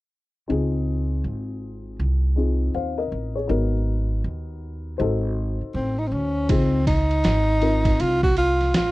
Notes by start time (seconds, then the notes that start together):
0.48 C#2 C4 D#4 F4 G#4
1.24 G#1
1.99 C2
2.36 C4 D#4 F4 G#4
2.74 D#2 C5 F5
2.98 A#4 D#5
3.12 A1
3.35 G#4 C#5
3.47 G#1 B3 D#4 F#4 A#4
4.24 D#2
4.98 G#1 D#4 F#4 A4 C5
5.61 muted upright bass stroke
5.74 A1 C4
5.99 D#4
6.08 D2 C4
6.12 C#4
6.49 C#2 C4 D#4 F4 G#4, kick, ride
6.87 D#4, kick, ride
7.11 ride
7.24 G#1, snare, hi-hat pedal, ride
7.61 C4 D#4 F4 A#4, ride
7.85 kick, ride
8.00 C2 F4, ride
8.23 F#4, kick
8.37 F4, ride
8.61 snare, ride
8.74 A1 F4, snare, hi-hat pedal, ride